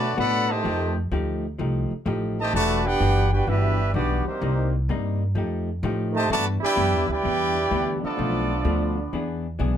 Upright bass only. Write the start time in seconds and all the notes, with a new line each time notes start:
Already playing: B2
0.18 A2
0.65 F2
1.11 D2
1.59 C2
1.91 muted upright bass stroke
2.06 A1
2.53 E1
3.00 F#1
3.47 G1
3.94 B1
4.26 muted upright bass stroke
4.42 C2
4.89 G2
5.35 F2
5.83 A2
6.30 G2
6.62 muted upright bass stroke
6.77 F#2
6.93 E2
7.09 D2
7.25 E2
7.71 D2
8.04 muted upright bass stroke
8.19 B1
8.65 D2
9.13 E2
9.59 B1